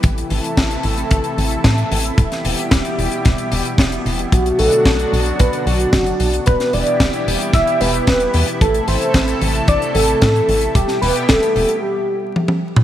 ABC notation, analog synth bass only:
X:1
M:4/4
L:1/8
Q:1/4=112
K:Em
V:1 name="Analog synth bass" clef=bass
A,,, A,,, A,,, A,,, A,,, A,,, A,, A,,, | E,,, E,,, E,,, E,,, E,,, E,,, E,,, E,,, | B,,, B,,, B,,, B,,, B,,, B,,, F,,, B,,, | E,,, E,,, E,,, E,,, E,,, E,,, E,,, E,, |
A,,, A,,, A,,, A,,, A,,, A,,, A,, A,,, | E,,, E,,, E,,, E,,, z4 |]